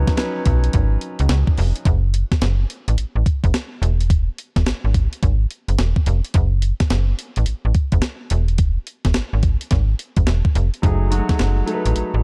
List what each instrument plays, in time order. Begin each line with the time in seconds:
Already playing: grand piano F3 F#3 C#4 D#4 B4
0.07 kick, snare, closed hi-hat
0.17 grand piano F#3 C#4 D#4 B4, snare, closed hi-hat
0.46 fm bass B1, kick, closed hi-hat
0.64 closed hi-hat
0.73 fm bass G#1, kick, closed hi-hat
1.01 closed hi-hat
1.19 fm bass C#2, closed hi-hat
1.29 fm bass C#2, snare, closed hi-hat
1.47 kick
1.58 fm bass F1, open hi-hat
1.76 closed hi-hat
1.85 fm bass F#1, kick, closed hi-hat
2.14 closed hi-hat
2.32 kick, snare, closed hi-hat
2.41 fm bass F#1, snare, closed hi-hat
2.70 closed hi-hat
2.88 fm bass A1, closed hi-hat
2.98 fm bass A1, closed hi-hat
3.16 fm bass A1
3.26 kick, closed hi-hat
3.44 fm bass F#1, kick, closed hi-hat
3.54 snare, closed hi-hat
3.82 fm bass E1, closed hi-hat
4.01 closed hi-hat
4.10 kick, closed hi-hat
4.38 closed hi-hat
4.56 fm bass E1, kick, snare, closed hi-hat
4.66 snare, closed hi-hat
4.84 fm bass G#1
4.94 kick, closed hi-hat
5.13 closed hi-hat
5.23 fm bass G#1, kick, closed hi-hat
5.51 closed hi-hat
5.68 fm bass F#1, closed hi-hat
5.79 fm bass E1, snare, closed hi-hat
5.96 kick
6.06 fm bass F1, closed hi-hat
6.25 closed hi-hat
6.34 fm bass F#1, kick, closed hi-hat
6.62 closed hi-hat
6.80 kick, snare, closed hi-hat
6.90 fm bass F#1, snare, closed hi-hat
7.19 closed hi-hat
7.36 fm bass A1, closed hi-hat
7.46 fm bass A1, closed hi-hat
7.65 fm bass A1
7.75 kick, closed hi-hat
7.92 fm bass F#1, kick, closed hi-hat
8.02 snare, closed hi-hat
8.30 fm bass E1, closed hi-hat
8.48 closed hi-hat
8.58 kick, closed hi-hat
8.87 closed hi-hat
9.05 fm bass E1, kick, snare, closed hi-hat
9.14 fm bass G#1, snare, closed hi-hat
9.33 fm bass G#1
9.43 kick, closed hi-hat
9.61 closed hi-hat
9.71 fm bass G#1, kick, snare, closed hi-hat
9.99 closed hi-hat
10.16 fm bass F#1, kick, closed hi-hat
10.27 fm bass E1, snare, closed hi-hat
10.45 kick
10.55 fm bass F1, closed hi-hat
10.74 closed hi-hat
10.82 fm bass F#1, grand piano F#3 A3 D#4 G#4, kick, closed hi-hat
11.10 grand piano F#3 G#3 D#4 F#4, closed hi-hat
11.17 grand piano A3
11.29 kick, snare, closed hi-hat
11.39 fm bass F#1, snare, closed hi-hat
11.66 grand piano F#3 A3 D#4 A4, closed hi-hat
11.74 grand piano B4
11.86 fm bass A1, closed hi-hat
11.96 closed hi-hat
12.14 fm bass A1